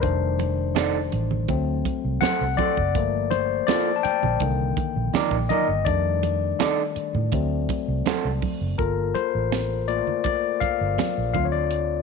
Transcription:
0.02 1.09 F1 loud
0.02 1.08 D#3 soft
0.02 1.08 G3 soft
0.02 1.08 A3 soft
0.02 1.09 D4 medium
0.02 2.17 C5 medium
0.02 kick loud
0.02 closed hi-hat medium
0.39 closed hi-hat medium
0.39 muted conga medium
0.75 0.96 D#4 medium
0.75 0.96 A4 medium
0.75 0.97 D5 medium
0.75 snare medium
0.75 closed hi-hat medium
0.75 high conga medium
1.12 1.46 A1 medium
1.12 closed hi-hat medium
1.12 muted conga soft
1.31 low conga soft
1.48 1.82 D2 loud
1.48 2.54 F#3 medium
1.48 2.54 A3 soft
1.48 2.55 C4 medium
1.48 kick medium
1.48 closed hi-hat medium
1.48 muted conga medium
1.85 kick medium
1.85 closed hi-hat medium
1.85 muted conga soft
2.05 2.20 C2 medium
2.21 2.42 C4 medium
2.21 2.43 F#4 medium
2.21 2.43 A4 medium
2.21 2.59 F#5 loud
2.21 snare loud
2.21 closed hi-hat medium
2.21 high conga medium
2.41 2.57 C2 medium
2.57 2.74 C4 medium
2.57 2.75 F#4 medium
2.57 2.75 A4 medium
2.57 3.27 D5 medium
2.57 kick medium
2.57 closed hi-hat medium
2.57 high conga medium
2.77 2.95 F#1 medium
2.77 kick medium
2.95 3.61 G1 loud
2.95 4.00 F3 medium
2.95 4.00 A3 soft
2.95 4.01 A#3 medium
2.95 kick loud
2.95 closed hi-hat medium
3.31 3.69 C5 medium
3.31 closed hi-hat medium
3.31 muted conga medium
3.67 3.88 A#3 medium
3.67 3.89 F4 medium
3.67 3.89 A4 medium
3.67 3.80 D5 medium
3.67 snare loud
3.67 closed hi-hat medium
3.67 high conga medium
3.96 4.04 A5 medium
4.03 5.09 G5 loud
4.03 muted fingered electric bass stroke soft
4.03 closed hi-hat medium
4.03 muted conga soft
4.23 4.39 A#1 medium
4.23 low conga medium
4.40 4.73 C2 medium
4.40 5.83 D3 medium
4.40 5.83 D#3 medium
4.40 5.83 A#3 soft
4.40 kick medium
4.40 closed hi-hat medium
4.40 muted conga soft
4.77 muted fingered electric bass stroke medium
4.77 kick medium
4.77 closed hi-hat medium
4.77 muted conga soft
4.96 5.12 A#1 medium
5.14 5.34 D#4 medium
5.14 5.35 A#4 medium
5.14 5.35 D5 loud
5.14 muted fingered electric bass stroke soft
5.14 snare loud
5.14 closed hi-hat medium
5.14 high conga medium
5.31 5.48 A#1 medium
5.31 kick medium
5.49 5.66 D#4 medium
5.49 5.67 A#4 medium
5.49 5.67 D5 medium
5.49 5.84 D#5 medium
5.49 closed hi-hat medium
5.49 high conga medium
5.68 5.85 G1 medium
5.85 6.52 F2 loud
5.85 6.35 D#3 soft
5.85 6.35 G3 soft
5.85 6.35 A3 soft
5.85 6.36 D4 medium
5.85 8.01 D5 medium
5.85 kick loud
5.85 closed hi-hat medium
6.23 closed hi-hat medium
6.23 muted conga soft
6.59 6.80 D#4 medium
6.59 6.81 A4 medium
6.59 6.81 D5 medium
6.59 snare loud
6.59 closed hi-hat medium
6.59 high conga medium
6.96 muted fingered electric bass stroke soft
6.96 closed hi-hat medium
7.15 7.31 A2 medium
7.15 low conga soft
7.32 7.66 D2 medium
7.32 7.81 F#3 medium
7.32 7.81 A3 soft
7.32 7.82 C4 medium
7.32 kick medium
7.32 closed hi-hat medium
7.32 muted conga soft
7.69 muted fingered electric bass stroke soft
7.69 kick medium
7.69 closed hi-hat medium
7.69 muted conga soft
7.88 8.04 C2 medium
8.06 8.27 C4 medium
8.06 8.27 F#4 medium
8.06 8.27 A4 medium
8.06 snare loud
8.06 closed hi-hat medium
8.06 high conga medium
8.25 8.41 C2 medium
8.42 kick medium
8.42 open hi-hat medium
8.42 high conga medium
8.61 8.77 F#1 medium
8.78 9.12 G1 medium
8.78 9.87 A#3 soft
8.78 9.88 F4 medium
8.78 11.31 A4 soft
8.78 9.16 A#4 medium
8.78 kick loud
8.78 closed hi-hat medium
9.14 9.90 C5 medium
9.14 closed hi-hat medium
9.14 muted conga soft
9.35 10.00 A1 medium
9.52 snare medium
9.52 closed hi-hat medium
9.52 high conga medium
9.88 10.21 A3 soft
9.88 10.22 A#3 soft
9.88 10.22 F4 soft
9.88 10.23 D5 medium
9.88 closed hi-hat medium
10.07 low conga soft
10.24 10.62 D5 medium
10.24 kick medium
10.24 closed hi-hat medium
10.24 muted conga soft
10.60 11.32 F5 medium
10.60 muted fingered electric bass stroke soft
10.60 kick medium
10.60 closed hi-hat medium
10.60 muted conga soft
10.81 10.97 G1 medium
10.98 snare loud
10.98 closed hi-hat medium
10.98 high conga medium
11.18 11.34 A#1 medium
11.34 12.01 D2 loud
11.34 12.02 A3 soft
11.34 12.02 C4 soft
11.34 12.02 F4 soft
11.34 11.46 F5 medium
11.34 kick medium
11.34 closed hi-hat medium
11.34 high conga medium
11.45 11.53 C#5 medium
11.52 12.02 D5 medium
11.71 closed hi-hat medium

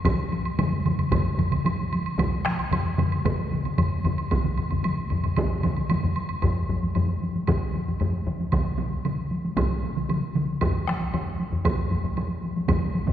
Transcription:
0.05 taiko loud
0.05 taiko low-mid medium
0.05 taiko mid loud
0.05 taiko high medium
0.05 high woodblock medium
0.19 taiko high soft
0.32 taiko high medium
0.32 high woodblock soft
0.45 taiko high soft
0.45 high woodblock soft
0.59 taiko low-mid medium
0.59 taiko mid medium
0.59 taiko high medium
0.59 high woodblock soft
0.72 taiko high soft
0.85 taiko low-mid medium
0.85 taiko mid medium
0.85 taiko high medium
0.85 high woodblock soft
0.98 taiko low-mid medium
0.98 taiko mid medium
0.98 taiko high soft
0.98 high woodblock soft
1.11 taiko loud
1.11 taiko low-mid loud
1.11 taiko mid loud
1.11 taiko high medium
1.11 high woodblock medium
1.26 taiko high soft
1.38 taiko low-mid medium
1.38 taiko mid medium
1.38 taiko high medium
1.38 high woodblock soft
1.52 taiko low-mid medium
1.52 taiko mid medium
1.52 taiko high soft
1.52 high woodblock soft
1.65 taiko low-mid medium
1.65 taiko mid medium
1.65 taiko high medium
1.65 high woodblock soft
1.79 taiko high medium
1.92 taiko high medium
1.92 high woodblock soft
2.06 taiko high soft
2.06 high woodblock soft
2.18 taiko medium
2.18 taiko low-mid medium
2.18 taiko mid medium
2.18 taiko high medium
2.18 high woodblock medium
2.33 taiko high soft
2.45 taiko rim medium
2.45 taiko high medium
2.45 high woodblock soft
2.59 taiko high soft
2.59 high woodblock soft
2.71 taiko low-mid loud
2.71 taiko mid medium
2.71 taiko high medium
2.71 high woodblock medium
2.86 taiko high soft
2.98 taiko low-mid medium
2.98 taiko mid medium
2.98 taiko high soft
2.98 high woodblock soft
3.12 taiko high soft
3.12 high woodblock soft
3.25 taiko loud
3.25 taiko low-mid medium
3.25 taiko mid medium
3.25 taiko high medium
3.25 high woodblock soft
3.39 taiko high soft
3.52 taiko low-mid medium
3.52 taiko mid medium
3.52 taiko high soft
3.65 taiko low-mid medium
3.65 taiko mid medium
3.65 taiko high soft
3.65 high woodblock soft
3.78 taiko low-mid loud
3.78 taiko mid medium
3.78 taiko high medium
3.78 high woodblock medium
3.92 taiko high soft
4.04 taiko low-mid medium
4.04 taiko mid loud
4.04 taiko high soft
4.04 high woodblock soft
4.18 taiko high soft
4.18 high woodblock soft
4.31 taiko medium
4.31 taiko low-mid medium
4.31 taiko mid medium
4.31 taiko high soft
4.31 high woodblock soft
4.44 taiko low-mid medium
4.44 taiko mid medium
4.44 taiko high soft
4.58 taiko low-mid medium
4.58 taiko mid medium
4.58 taiko high soft
4.58 high woodblock soft
4.71 taiko low-mid medium
4.71 taiko mid medium
4.71 taiko high soft
4.71 high woodblock soft
4.83 taiko low-mid medium
4.83 taiko mid medium
4.83 taiko high medium
4.83 high woodblock soft
4.99 taiko high soft
5.10 taiko low-mid medium
5.10 taiko mid medium
5.10 taiko high soft
5.10 high woodblock soft
5.24 taiko low-mid medium
5.24 taiko mid medium
5.24 taiko high soft
5.24 high woodblock soft
5.37 taiko loud
5.37 taiko low-mid medium
5.37 taiko mid medium
5.37 taiko high medium
5.37 high woodblock soft
5.52 taiko high soft
5.63 taiko low-mid medium
5.63 taiko mid loud
5.63 taiko high soft
5.63 high woodblock soft
5.77 high woodblock soft
5.90 taiko low-mid medium
5.90 taiko mid medium
5.90 taiko high medium
5.90 high woodblock soft
6.03 taiko low-mid medium
6.03 taiko mid medium
6.16 taiko high soft
6.16 high woodblock soft
6.29 taiko high soft
6.29 high woodblock soft
6.42 taiko medium
6.42 taiko low-mid medium
6.42 taiko high medium
6.42 high woodblock soft
6.69 taiko low-mid medium
6.69 taiko high soft
6.83 taiko high soft
6.95 taiko low-mid medium
6.95 taiko high medium
6.95 high woodblock soft
7.22 taiko high soft
7.36 taiko high soft
7.47 taiko medium
7.47 taiko low-mid medium
7.47 taiko high medium
7.47 high woodblock soft
7.75 taiko high soft
7.88 taiko low-mid medium
7.88 taiko high soft
8.00 taiko low-mid medium
8.00 taiko high medium
8.00 high woodblock soft
8.27 taiko low-mid medium
8.27 taiko high soft
8.40 taiko high medium
8.52 taiko medium
8.52 taiko mid medium
8.52 taiko high medium
8.52 high woodblock soft
8.78 taiko mid medium
8.78 taiko high soft
8.92 taiko high soft
9.05 taiko mid medium
9.05 taiko high medium
9.05 high woodblock soft
9.31 taiko high soft
9.44 taiko high soft
9.57 taiko loud
9.57 taiko mid medium
9.57 taiko high medium
9.57 high woodblock soft
9.84 taiko high soft
9.96 taiko mid medium
9.96 taiko high soft
10.09 taiko mid medium
10.09 taiko high medium
10.09 high woodblock soft
10.36 taiko mid medium
10.36 taiko high soft
10.49 taiko high soft
10.61 taiko loud
10.61 taiko low-mid medium
10.61 taiko high medium
10.61 high woodblock medium
10.87 taiko rim medium
10.87 taiko high soft
11.01 taiko high soft
11.13 taiko low-mid medium
11.13 taiko high medium
11.13 high woodblock soft
11.40 taiko high soft
11.52 taiko low-mid medium
11.52 taiko high soft
11.65 taiko loud
11.65 taiko low-mid medium
11.65 taiko high medium
11.65 high woodblock medium
11.78 taiko low-mid medium
11.91 taiko low-mid medium
11.91 taiko high medium
12.04 taiko low-mid medium
12.04 taiko high soft
12.17 taiko high medium
12.17 high woodblock soft
12.44 taiko high soft
12.56 taiko high medium
12.68 taiko medium
12.68 taiko low-mid loud
12.68 taiko mid medium
12.68 taiko high medium
12.68 high woodblock medium
12.95 taiko high medium
13.07 taiko low-mid medium
13.07 taiko mid loud
13.07 taiko high medium

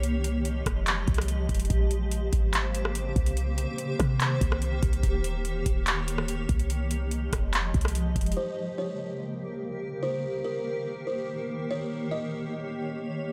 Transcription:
0.00 0.63 C2 loud
0.00 1.68 F3 medium
0.00 1.68 G#3 medium
0.00 6.66 G4 medium
0.00 1.68 D#5 medium
0.00 closed hi-hat medium
0.24 closed hi-hat medium
0.45 closed hi-hat medium
0.66 1.06 F1 loud
0.66 kick medium
0.66 cross-stick medium
0.66 closed hi-hat medium
0.87 clap loud
0.87 closed hi-hat medium
1.08 1.48 C2 loud
1.08 kick medium
1.08 closed hi-hat soft
1.14 cross-stick loud
1.14 closed hi-hat medium
1.21 closed hi-hat medium
1.28 closed hi-hat medium
1.49 1.69 F1 loud
1.49 kick loud
1.49 closed hi-hat medium
1.55 closed hi-hat medium
1.60 closed hi-hat medium
1.65 closed hi-hat medium
1.70 2.30 A#1 loud
1.70 3.35 C#3 medium
1.70 6.66 A#3 medium
1.70 5.00 C5 medium
1.70 kick loud
1.70 closed hi-hat medium
1.91 closed hi-hat medium
2.12 closed hi-hat medium
2.33 3.13 G#1 loud
2.33 kick loud
2.33 closed hi-hat medium
2.53 clap loud
2.53 closed hi-hat medium
2.75 closed hi-hat medium
2.85 cross-stick medium
2.95 closed hi-hat medium
3.16 3.66 C2 loud
3.16 kick loud
3.16 closed hi-hat medium
3.26 closed hi-hat medium
3.37 5.02 D#3 medium
3.37 closed hi-hat medium
3.58 closed hi-hat medium
3.78 closed hi-hat medium
4.00 4.39 C3 loud
4.00 kick loud
4.00 cross-stick medium
4.00 closed hi-hat medium
4.20 clap loud
4.20 closed hi-hat medium
4.41 4.81 C2 loud
4.41 kick medium
4.41 closed hi-hat medium
4.52 cross-stick medium
4.62 closed hi-hat medium
4.83 5.03 C2 loud
4.83 kick loud
4.83 closed hi-hat medium
4.93 closed hi-hat medium
5.03 5.63 D#1 loud
5.03 6.68 D#3 medium
5.03 6.68 C#5 medium
5.03 kick loud
5.03 closed hi-hat medium
5.24 closed hi-hat medium
5.45 closed hi-hat medium
5.66 6.46 D#1 loud
5.66 kick loud
5.66 closed hi-hat medium
5.87 clap loud
5.87 closed hi-hat medium
6.08 closed hi-hat medium
6.18 cross-stick medium
6.28 closed hi-hat medium
6.49 7.29 C2 loud
6.49 kick loud
6.49 closed hi-hat medium
6.59 closed hi-hat medium
6.70 8.35 F3 medium
6.70 8.35 G#3 medium
6.70 8.35 G4 medium
6.70 8.35 D#5 medium
6.70 closed hi-hat medium
6.91 closed hi-hat medium
7.11 closed hi-hat medium
7.33 7.73 F1 loud
7.33 kick loud
7.33 cross-stick medium
7.33 closed hi-hat medium
7.53 clap loud
7.53 closed hi-hat medium
7.74 8.14 C2 loud
7.74 kick medium
7.74 closed hi-hat soft
7.81 cross-stick loud
7.81 closed hi-hat medium
7.88 closed hi-hat medium
7.95 closed hi-hat medium
8.16 8.36 F1 loud
8.16 kick loud
8.16 closed hi-hat medium
8.21 closed hi-hat medium
8.26 closed hi-hat medium
8.32 closed hi-hat medium
8.37 10.02 C#3 medium
8.37 10.02 A#3 medium
8.37 13.32 G4 medium
8.37 11.67 A#4 medium
8.37 8.76 C5 medium
8.78 9.99 C#5 medium
10.03 13.32 D#3 medium
10.03 13.32 A#3 medium
10.03 10.42 C5 medium
10.45 11.03 A#4 medium
11.07 11.27 C5 medium
11.70 13.32 C#5 medium
11.70 12.10 C#5 medium
12.11 13.32 D#5 medium

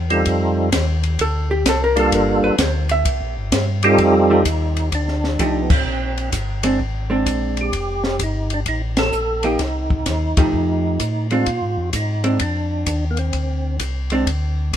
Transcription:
0.00 0.25 E2 medium
0.10 0.70 G3 medium
0.10 0.70 C4 medium
0.10 0.70 D#4 medium
0.10 0.70 F4 medium
0.10 0.70 A4 medium
0.10 ride soft
0.26 0.71 F2 medium
0.26 kick soft
0.26 ride medium
0.72 1.18 D#2 medium
0.72 kick soft
0.72 snare medium
0.72 hi-hat pedal medium
0.72 ride medium
1.03 ride soft
1.19 1.65 D2 medium
1.19 1.50 A4 medium
1.19 kick soft
1.19 ride medium
1.51 1.66 G4 medium
1.65 2.11 C2 medium
1.65 1.83 A4 medium
1.65 kick soft
1.65 snare medium
1.65 hi-hat pedal medium
1.65 ride medium
1.84 1.98 A#4 medium
1.96 2.56 G3 medium
1.96 2.56 A#3 medium
1.96 2.56 D4 medium
1.96 2.56 F4 medium
1.96 2.56 A4 medium
1.96 2.15 A4 medium
1.96 ride soft
2.12 2.41 G1 medium
2.12 2.44 A#4 medium
2.12 kick soft
2.12 ride medium
2.42 2.50 G1 soft
2.42 2.61 B4 medium
2.58 3.04 D2 medium
2.58 2.90 C5 medium
2.58 kick soft
2.58 snare medium
2.58 hi-hat pedal medium
2.58 ride medium
2.89 3.34 E5 loud
2.89 ride medium
3.05 3.21 C2 medium
3.05 kick soft
3.05 ride medium
3.21 3.37 A#1 medium
3.37 3.51 G1 medium
3.52 3.97 G2 medium
3.52 kick soft
3.52 snare medium
3.52 hi-hat pedal medium
3.52 ride medium
3.83 4.43 G3 medium
3.83 4.43 C4 medium
3.83 4.43 D#4 medium
3.83 4.43 F4 medium
3.83 4.48 G4 loud
3.83 4.43 A4 medium
3.83 ride soft
3.98 4.44 F2 medium
3.98 kick soft
3.98 ride soft
4.30 4.44 F3 medium
4.30 4.45 A3 medium
4.30 4.45 D#4 medium
4.30 4.45 G4 medium
4.45 4.91 D#2 medium
4.45 4.90 D#4 medium
4.45 kick soft
4.45 hi-hat pedal medium
4.45 ride medium
4.77 ride soft
4.92 5.38 D2 medium
4.92 5.40 D4 medium
4.92 kick soft
4.92 ride medium
5.08 snare soft
5.24 snare soft
5.39 5.85 C2 medium
5.39 5.67 F3 medium
5.39 5.67 A3 medium
5.39 5.63 D4 medium
5.39 5.68 D#4 medium
5.39 5.68 G4 medium
5.39 kick soft
5.39 hi-hat pedal soft
5.39 ride medium
5.62 5.71 B3 medium
5.70 6.30 C4 medium
5.70 kick medium
5.70 crash medium
5.85 6.31 A#1 medium
6.18 ride soft
6.32 6.78 G1 medium
6.32 kick soft
6.32 hi-hat pedal medium
6.32 ride medium
6.63 6.78 G#3 medium
6.63 6.78 C4 medium
6.63 6.78 D4 medium
6.63 ride medium
6.79 7.24 G#1 medium
6.79 kick soft
7.10 7.69 G#3 medium
7.10 7.70 C4 medium
7.10 7.70 D4 medium
7.26 7.71 A#1 medium
7.26 kick soft
7.26 hi-hat pedal medium
7.26 ride medium
7.57 ride soft
7.61 8.23 G4 medium
7.72 8.18 F1 medium
7.72 kick soft
7.72 ride medium
8.04 snare medium
8.19 8.65 G1 medium
8.19 kick soft
8.19 hi-hat pedal medium
8.19 ride medium
8.23 8.53 D#4 medium
8.50 8.60 D4 medium
8.50 ride soft
8.66 9.11 A1 medium
8.66 8.82 D#4 medium
8.66 kick soft
8.66 ride medium
8.97 9.46 A4 loud
8.97 snare medium
8.97 ride medium
9.12 9.58 A#1 medium
9.12 hi-hat pedal soft
9.43 9.58 A#3 medium
9.43 9.58 D#4 medium
9.43 9.59 G4 medium
9.43 9.61 G4 loud
9.43 ride soft
9.59 10.05 C2 medium
9.59 11.27 D#4 medium
9.59 kick soft
9.59 snare soft
9.59 ride medium
9.90 kick soft
10.06 10.35 D#2 medium
10.06 kick soft
10.06 snare soft
10.06 hi-hat pedal medium
10.06 ride medium
10.37 10.45 D#2 soft
10.37 10.97 F3 medium
10.37 10.97 A3 medium
10.37 10.97 D#4 medium
10.37 10.97 G4 medium
10.37 kick medium
10.37 ride medium
10.53 10.99 F2 medium
10.53 kick soft
11.00 11.45 A2 medium
11.00 kick soft
11.00 hi-hat pedal medium
11.00 ride medium
11.31 11.45 G#3 soft
11.31 11.46 C4 medium
11.31 11.46 D4 medium
11.31 11.90 F4 medium
11.31 ride soft
11.46 11.61 A#2 medium
11.46 kick soft
11.46 ride medium
11.62 11.78 G#2 medium
11.77 11.92 F2 medium
11.93 12.39 G#2 medium
11.93 12.38 D#4 medium
11.93 kick soft
11.93 hi-hat pedal medium
11.93 ride medium
12.24 12.38 G#3 medium
12.24 12.38 C4 medium
12.24 12.39 D4 medium
12.24 ride soft
12.39 12.85 F2 medium
12.39 13.05 D4 medium
12.39 kick soft
12.39 ride medium
12.86 13.32 D#2 medium
12.86 kick soft
12.86 hi-hat pedal medium
12.86 ride medium
13.11 13.19 A#3 medium
13.17 13.76 C4 medium
13.17 ride soft
13.33 13.79 D2 medium
13.33 kick soft
13.33 ride soft
13.80 14.25 C2 medium
13.80 kick soft
13.80 hi-hat pedal medium
13.80 ride medium
14.10 14.26 G#3 medium
14.10 14.26 C4 medium
14.10 14.26 D4 medium
14.10 ride soft
14.26 14.72 D2 medium
14.26 kick soft
14.26 ride medium
14.73 14.77 A#1 medium
14.73 kick soft
14.73 hi-hat pedal medium
14.73 ride medium

